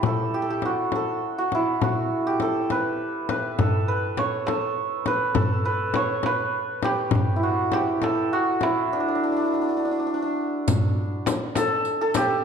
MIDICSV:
0, 0, Header, 1, 5, 480
1, 0, Start_track
1, 0, Tempo, 590551
1, 39, Time_signature, 6, 3, 24, 8
1, 10114, End_track
2, 0, Start_track
2, 0, Title_t, "Santur"
2, 0, Program_c, 0, 15
2, 0, Note_on_c, 0, 64, 52
2, 0, Note_on_c, 0, 67, 70
2, 0, Note_on_c, 0, 71, 64
2, 47, Note_on_c, 0, 69, 75
2, 274, Note_off_c, 0, 67, 0
2, 277, Note_on_c, 0, 67, 73
2, 338, Note_off_c, 0, 69, 0
2, 341, Note_on_c, 0, 69, 61
2, 405, Note_off_c, 0, 67, 0
2, 408, Note_on_c, 0, 67, 68
2, 531, Note_on_c, 0, 66, 66
2, 545, Note_off_c, 0, 71, 0
2, 580, Note_off_c, 0, 67, 0
2, 772, Note_off_c, 0, 69, 0
2, 776, Note_on_c, 0, 69, 71
2, 1121, Note_off_c, 0, 66, 0
2, 1124, Note_on_c, 0, 66, 71
2, 1254, Note_off_c, 0, 64, 0
2, 1257, Note_on_c, 0, 64, 70
2, 1486, Note_off_c, 0, 66, 0
2, 1490, Note_on_c, 0, 66, 75
2, 1842, Note_on_c, 0, 67, 75
2, 1891, Note_off_c, 0, 66, 0
2, 1963, Note_off_c, 0, 69, 0
2, 1966, Note_on_c, 0, 69, 76
2, 2207, Note_on_c, 0, 71, 76
2, 2676, Note_off_c, 0, 71, 0
2, 2679, Note_on_c, 0, 71, 69
2, 2915, Note_off_c, 0, 69, 0
2, 2919, Note_on_c, 0, 69, 78
2, 3152, Note_off_c, 0, 71, 0
2, 3155, Note_on_c, 0, 71, 72
2, 3400, Note_on_c, 0, 73, 78
2, 3626, Note_off_c, 0, 69, 0
2, 3629, Note_on_c, 0, 69, 76
2, 4084, Note_off_c, 0, 64, 0
2, 4122, Note_off_c, 0, 71, 0
2, 4125, Note_on_c, 0, 71, 80
2, 4341, Note_off_c, 0, 69, 0
2, 4344, Note_on_c, 0, 69, 85
2, 4395, Note_off_c, 0, 67, 0
2, 4592, Note_off_c, 0, 71, 0
2, 4595, Note_on_c, 0, 71, 80
2, 4838, Note_off_c, 0, 73, 0
2, 4841, Note_on_c, 0, 73, 76
2, 5085, Note_off_c, 0, 71, 0
2, 5089, Note_on_c, 0, 71, 81
2, 5562, Note_on_c, 0, 67, 84
2, 5984, Note_on_c, 0, 64, 56
2, 6040, Note_on_c, 0, 66, 69
2, 6089, Note_off_c, 0, 67, 0
2, 6290, Note_on_c, 0, 67, 77
2, 6339, Note_off_c, 0, 66, 0
2, 6522, Note_off_c, 0, 69, 0
2, 6526, Note_on_c, 0, 69, 79
2, 6769, Note_on_c, 0, 66, 78
2, 6818, Note_off_c, 0, 67, 0
2, 6917, Note_off_c, 0, 73, 0
2, 7009, Note_off_c, 0, 64, 0
2, 7012, Note_on_c, 0, 64, 76
2, 7257, Note_on_c, 0, 62, 71
2, 7309, Note_off_c, 0, 71, 0
2, 7313, Note_off_c, 0, 62, 0
2, 7316, Note_on_c, 0, 62, 51
2, 7379, Note_off_c, 0, 62, 0
2, 7383, Note_on_c, 0, 62, 51
2, 7434, Note_off_c, 0, 62, 0
2, 7438, Note_on_c, 0, 62, 45
2, 7503, Note_off_c, 0, 62, 0
2, 7507, Note_on_c, 0, 62, 49
2, 7572, Note_off_c, 0, 62, 0
2, 7576, Note_on_c, 0, 62, 41
2, 7608, Note_off_c, 0, 62, 0
2, 7611, Note_on_c, 0, 62, 48
2, 7684, Note_off_c, 0, 62, 0
2, 7687, Note_on_c, 0, 62, 41
2, 7747, Note_off_c, 0, 62, 0
2, 7750, Note_on_c, 0, 62, 45
2, 7811, Note_off_c, 0, 62, 0
2, 7815, Note_on_c, 0, 62, 38
2, 7871, Note_off_c, 0, 62, 0
2, 7874, Note_on_c, 0, 62, 42
2, 7935, Note_off_c, 0, 62, 0
2, 7939, Note_on_c, 0, 62, 42
2, 8002, Note_off_c, 0, 62, 0
2, 8006, Note_on_c, 0, 62, 49
2, 8053, Note_off_c, 0, 62, 0
2, 8057, Note_on_c, 0, 62, 40
2, 8121, Note_off_c, 0, 62, 0
2, 8124, Note_on_c, 0, 62, 50
2, 8178, Note_off_c, 0, 62, 0
2, 8182, Note_on_c, 0, 62, 46
2, 8238, Note_off_c, 0, 62, 0
2, 8241, Note_on_c, 0, 62, 54
2, 8306, Note_off_c, 0, 62, 0
2, 8309, Note_on_c, 0, 62, 50
2, 8904, Note_off_c, 0, 69, 0
2, 9408, Note_on_c, 0, 69, 96
2, 9415, Note_off_c, 0, 66, 0
2, 9761, Note_off_c, 0, 69, 0
2, 9765, Note_on_c, 0, 69, 87
2, 9839, Note_off_c, 0, 64, 0
2, 9891, Note_on_c, 0, 67, 88
2, 10114, Note_off_c, 0, 62, 0
2, 10114, Note_off_c, 0, 67, 0
2, 10114, Note_off_c, 0, 69, 0
2, 10114, End_track
3, 0, Start_track
3, 0, Title_t, "Frame drum"
3, 25, Note_on_c, 9, 64, 74
3, 106, Note_off_c, 9, 64, 0
3, 505, Note_on_c, 9, 64, 51
3, 586, Note_off_c, 9, 64, 0
3, 747, Note_on_c, 9, 64, 53
3, 828, Note_off_c, 9, 64, 0
3, 1235, Note_on_c, 9, 64, 56
3, 1316, Note_off_c, 9, 64, 0
3, 1475, Note_on_c, 9, 64, 67
3, 1557, Note_off_c, 9, 64, 0
3, 1949, Note_on_c, 9, 64, 55
3, 2031, Note_off_c, 9, 64, 0
3, 2196, Note_on_c, 9, 64, 58
3, 2278, Note_off_c, 9, 64, 0
3, 2674, Note_on_c, 9, 64, 62
3, 2755, Note_off_c, 9, 64, 0
3, 2915, Note_on_c, 9, 64, 75
3, 2996, Note_off_c, 9, 64, 0
3, 3393, Note_on_c, 9, 64, 62
3, 3474, Note_off_c, 9, 64, 0
3, 3643, Note_on_c, 9, 64, 58
3, 3724, Note_off_c, 9, 64, 0
3, 4111, Note_on_c, 9, 64, 61
3, 4192, Note_off_c, 9, 64, 0
3, 4347, Note_on_c, 9, 64, 78
3, 4429, Note_off_c, 9, 64, 0
3, 4826, Note_on_c, 9, 64, 67
3, 4907, Note_off_c, 9, 64, 0
3, 5065, Note_on_c, 9, 64, 61
3, 5146, Note_off_c, 9, 64, 0
3, 5548, Note_on_c, 9, 64, 63
3, 5629, Note_off_c, 9, 64, 0
3, 5779, Note_on_c, 9, 64, 87
3, 5861, Note_off_c, 9, 64, 0
3, 6273, Note_on_c, 9, 64, 65
3, 6354, Note_off_c, 9, 64, 0
3, 6516, Note_on_c, 9, 64, 58
3, 6597, Note_off_c, 9, 64, 0
3, 6997, Note_on_c, 9, 64, 61
3, 7079, Note_off_c, 9, 64, 0
3, 8679, Note_on_c, 9, 64, 82
3, 8760, Note_off_c, 9, 64, 0
3, 9159, Note_on_c, 9, 64, 80
3, 9240, Note_off_c, 9, 64, 0
3, 9394, Note_on_c, 9, 64, 72
3, 9476, Note_off_c, 9, 64, 0
3, 9875, Note_on_c, 9, 64, 73
3, 9956, Note_off_c, 9, 64, 0
3, 10114, End_track
4, 0, Start_track
4, 0, Title_t, "Riq"
4, 8678, Note_on_c, 9, 54, 63
4, 8759, Note_off_c, 9, 54, 0
4, 9158, Note_on_c, 9, 54, 52
4, 9239, Note_off_c, 9, 54, 0
4, 9400, Note_on_c, 9, 54, 43
4, 9481, Note_off_c, 9, 54, 0
4, 9630, Note_on_c, 9, 54, 17
4, 9712, Note_off_c, 9, 54, 0
4, 9869, Note_on_c, 9, 54, 51
4, 9951, Note_off_c, 9, 54, 0
4, 10114, End_track
5, 0, Start_track
5, 0, Title_t, "Tombak"
5, 2921, Note_on_c, 9, 64, 80
5, 3003, Note_off_c, 9, 64, 0
5, 3161, Note_on_c, 9, 62, 22
5, 3242, Note_off_c, 9, 62, 0
5, 3397, Note_on_c, 9, 63, 59
5, 3478, Note_off_c, 9, 63, 0
5, 3632, Note_on_c, 9, 63, 60
5, 3714, Note_off_c, 9, 63, 0
5, 3752, Note_on_c, 9, 62, 23
5, 3834, Note_off_c, 9, 62, 0
5, 4356, Note_on_c, 9, 64, 78
5, 4438, Note_off_c, 9, 64, 0
5, 4595, Note_on_c, 9, 62, 22
5, 4676, Note_off_c, 9, 62, 0
5, 4840, Note_on_c, 9, 63, 61
5, 4921, Note_off_c, 9, 63, 0
5, 5088, Note_on_c, 9, 63, 59
5, 5169, Note_off_c, 9, 63, 0
5, 5204, Note_on_c, 9, 62, 22
5, 5286, Note_off_c, 9, 62, 0
5, 5572, Note_on_c, 9, 63, 59
5, 5653, Note_off_c, 9, 63, 0
5, 5812, Note_on_c, 9, 64, 78
5, 5893, Note_off_c, 9, 64, 0
5, 6049, Note_on_c, 9, 62, 25
5, 6131, Note_off_c, 9, 62, 0
5, 6286, Note_on_c, 9, 63, 64
5, 6367, Note_off_c, 9, 63, 0
5, 6534, Note_on_c, 9, 63, 62
5, 6615, Note_off_c, 9, 63, 0
5, 6658, Note_on_c, 9, 62, 23
5, 6739, Note_off_c, 9, 62, 0
5, 7016, Note_on_c, 9, 63, 70
5, 7097, Note_off_c, 9, 63, 0
5, 8686, Note_on_c, 9, 64, 93
5, 8767, Note_off_c, 9, 64, 0
5, 8923, Note_on_c, 9, 62, 25
5, 9005, Note_off_c, 9, 62, 0
5, 9154, Note_on_c, 9, 63, 64
5, 9236, Note_off_c, 9, 63, 0
5, 9391, Note_on_c, 9, 63, 62
5, 9472, Note_off_c, 9, 63, 0
5, 9521, Note_on_c, 9, 62, 23
5, 9602, Note_off_c, 9, 62, 0
5, 9888, Note_on_c, 9, 63, 63
5, 9969, Note_off_c, 9, 63, 0
5, 10114, End_track
0, 0, End_of_file